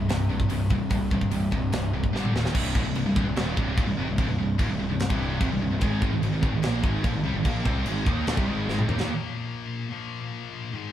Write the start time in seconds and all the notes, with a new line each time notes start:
0.08 C1 C2 G2 C3, snare, open hi-hat
0.30 C2 G2 C3
0.40 kick
0.50 C1 C2 G2 C3, open hi-hat
0.70 C2 G2 C3, kick
0.90 C1 C2 G2 C3, kick, open hi-hat
1.11 C2 G2 C3, kick
1.21 kick
1.32 C1 C2 G2 C3, open hi-hat
1.52 C1 C2 G2 C3, kick
1.72 C1 C2 G2 C3, snare, open hi-hat
1.93 C2 G2 C3
2.04 kick
2.13 G1 G2 D3 G3, snare
2.25 mid tom
2.33 D#1 D#2 A#2 D#3, snare
2.45 snare
2.54 C1 C2 G2 C3, kick, crash
2.75 C#1 C#2 G#2, kick
2.85 C1 C2 G2
2.95 C1 C2 G2, crash
3.05 C1 C2 G2
3.16 C1 C2 G2, kick
3.25 C1 C2 G2
3.35 D#1 D#2 A#2 D#3, snare, crash
3.57 C1 C2 G2 C3, kick
3.77 D#1 D#2 A#2, kick, crash
3.87 C1 C2 G2
3.97 F1 F2 C3
4.08 C1 C2 G2
4.18 C1 C2 G2, kick, crash
4.28 C1 C2 G2
4.39 C1 C2 G2
4.59 C#1 C#2 G#2, kick, crash
4.69 C1 C2 G2
4.80 C1 C2 G2
4.90 C1 C2 G2
5.00 snare, crash
5.10 C1 C2 G2 C3, kick
5.41 F1 F2 C3, kick, crash
5.51 C1 C2 G2
5.62 C1 C2 G2
5.71 C1 C2 G2
5.81 G#1 G#2 D#3 G#3, kick, crash
6.01 G#1 G#2 D#3, kick
6.12 G#1 G#2 D#3
6.22 G#1 G#2 D#3, crash
6.33 G#1 G#2 D#3
6.43 G#1 G#2 D#3, kick
6.53 G#1 G#2 D#3
6.62 A#1 A#2 F3 A#3, snare, crash
6.83 G#1 G#2 D#3 G#3, kick
7.04 A#1 A#2 F3, kick, crash
7.15 G#1 G#2 D#3
7.24 C2 C3 G3
7.34 G#1 G#2 D#3
7.45 A#1 A#2 F3 A#3, kick, crash
7.65 C2 C3 G3 C4, kick
7.85 G#1 G#2 D#3 G#3, crash
8.06 D#2 D#3 A#3 D#4, kick
8.26 D2 D3 A3, snare, crash
8.37 C2 C3 G3, kick
8.47 G#1 G#2 D#3 G#3
8.68 G#1 G#2 D#3 G#3, snare
8.79 mid tom
8.88 D#2 D#3 A#3, mid tom
8.99 D#2 D#3 A#3, snare
9.07 A#2 F3 A#3
9.90 A#2 F3 A#3
10.72 G#2 D#3 G#3